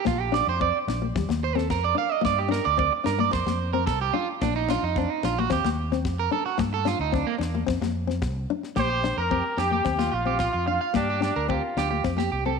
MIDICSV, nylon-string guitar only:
0, 0, Header, 1, 3, 480
1, 0, Start_track
1, 0, Key_signature, -2, "major"
1, 0, Tempo, 544959
1, 56, Time_signature, 4, 2, 24, 8
1, 11095, End_track
2, 0, Start_track
2, 0, Title_t, "Nylon-string guitar"
2, 0, Program_c, 0, 24
2, 43, Note_on_c, 0, 58, 85
2, 246, Note_off_c, 0, 58, 0
2, 282, Note_on_c, 0, 62, 88
2, 485, Note_off_c, 0, 62, 0
2, 532, Note_on_c, 0, 60, 82
2, 730, Note_off_c, 0, 60, 0
2, 776, Note_on_c, 0, 62, 68
2, 876, Note_off_c, 0, 62, 0
2, 897, Note_on_c, 0, 58, 71
2, 993, Note_off_c, 0, 58, 0
2, 1017, Note_on_c, 0, 55, 79
2, 1117, Note_off_c, 0, 55, 0
2, 1134, Note_on_c, 0, 58, 67
2, 1333, Note_off_c, 0, 58, 0
2, 1368, Note_on_c, 0, 60, 72
2, 1569, Note_off_c, 0, 60, 0
2, 1714, Note_on_c, 0, 62, 75
2, 1919, Note_off_c, 0, 62, 0
2, 1949, Note_on_c, 0, 58, 85
2, 2156, Note_off_c, 0, 58, 0
2, 2188, Note_on_c, 0, 62, 91
2, 2395, Note_off_c, 0, 62, 0
2, 2443, Note_on_c, 0, 60, 89
2, 2644, Note_off_c, 0, 60, 0
2, 2678, Note_on_c, 0, 62, 73
2, 2784, Note_off_c, 0, 62, 0
2, 2805, Note_on_c, 0, 58, 71
2, 2905, Note_off_c, 0, 58, 0
2, 3052, Note_on_c, 0, 58, 74
2, 3250, Note_off_c, 0, 58, 0
2, 3292, Note_on_c, 0, 60, 74
2, 3489, Note_off_c, 0, 60, 0
2, 3643, Note_on_c, 0, 62, 75
2, 3843, Note_off_c, 0, 62, 0
2, 3901, Note_on_c, 0, 58, 93
2, 4093, Note_off_c, 0, 58, 0
2, 4146, Note_on_c, 0, 62, 86
2, 4336, Note_off_c, 0, 62, 0
2, 4384, Note_on_c, 0, 60, 78
2, 4574, Note_off_c, 0, 60, 0
2, 4616, Note_on_c, 0, 62, 76
2, 4713, Note_off_c, 0, 62, 0
2, 4745, Note_on_c, 0, 58, 78
2, 4835, Note_off_c, 0, 58, 0
2, 4842, Note_on_c, 0, 60, 80
2, 4945, Note_off_c, 0, 60, 0
2, 4971, Note_on_c, 0, 58, 74
2, 5168, Note_off_c, 0, 58, 0
2, 5213, Note_on_c, 0, 60, 73
2, 5409, Note_off_c, 0, 60, 0
2, 5560, Note_on_c, 0, 62, 78
2, 5760, Note_off_c, 0, 62, 0
2, 5793, Note_on_c, 0, 58, 102
2, 5995, Note_off_c, 0, 58, 0
2, 6035, Note_on_c, 0, 62, 87
2, 6237, Note_off_c, 0, 62, 0
2, 6274, Note_on_c, 0, 60, 88
2, 6476, Note_off_c, 0, 60, 0
2, 6504, Note_on_c, 0, 62, 73
2, 6614, Note_off_c, 0, 62, 0
2, 6647, Note_on_c, 0, 58, 77
2, 6743, Note_off_c, 0, 58, 0
2, 6751, Note_on_c, 0, 60, 84
2, 6858, Note_off_c, 0, 60, 0
2, 6884, Note_on_c, 0, 58, 73
2, 7083, Note_off_c, 0, 58, 0
2, 7111, Note_on_c, 0, 60, 76
2, 7316, Note_off_c, 0, 60, 0
2, 7487, Note_on_c, 0, 62, 81
2, 7684, Note_off_c, 0, 62, 0
2, 7714, Note_on_c, 0, 58, 82
2, 7917, Note_off_c, 0, 58, 0
2, 7961, Note_on_c, 0, 62, 80
2, 8161, Note_off_c, 0, 62, 0
2, 8199, Note_on_c, 0, 60, 68
2, 8400, Note_off_c, 0, 60, 0
2, 8432, Note_on_c, 0, 62, 69
2, 8539, Note_off_c, 0, 62, 0
2, 8555, Note_on_c, 0, 58, 63
2, 8658, Note_off_c, 0, 58, 0
2, 8674, Note_on_c, 0, 60, 74
2, 8781, Note_off_c, 0, 60, 0
2, 8794, Note_on_c, 0, 58, 68
2, 8999, Note_off_c, 0, 58, 0
2, 9032, Note_on_c, 0, 60, 65
2, 9238, Note_off_c, 0, 60, 0
2, 9402, Note_on_c, 0, 62, 67
2, 9604, Note_off_c, 0, 62, 0
2, 9633, Note_on_c, 0, 58, 80
2, 9838, Note_off_c, 0, 58, 0
2, 9871, Note_on_c, 0, 62, 71
2, 10078, Note_off_c, 0, 62, 0
2, 10115, Note_on_c, 0, 60, 77
2, 10321, Note_off_c, 0, 60, 0
2, 10366, Note_on_c, 0, 62, 70
2, 10471, Note_off_c, 0, 62, 0
2, 10489, Note_on_c, 0, 58, 64
2, 10589, Note_off_c, 0, 58, 0
2, 10606, Note_on_c, 0, 60, 76
2, 10711, Note_off_c, 0, 60, 0
2, 10717, Note_on_c, 0, 58, 59
2, 10924, Note_off_c, 0, 58, 0
2, 10972, Note_on_c, 0, 60, 66
2, 11095, Note_off_c, 0, 60, 0
2, 11095, End_track
3, 0, Start_track
3, 0, Title_t, "Muted nylon-string guitar strokes"
3, 2917, Note_on_c, 9, 29, 88
3, 3005, Note_off_c, 9, 29, 0
3, 11095, End_track
0, 0, End_of_file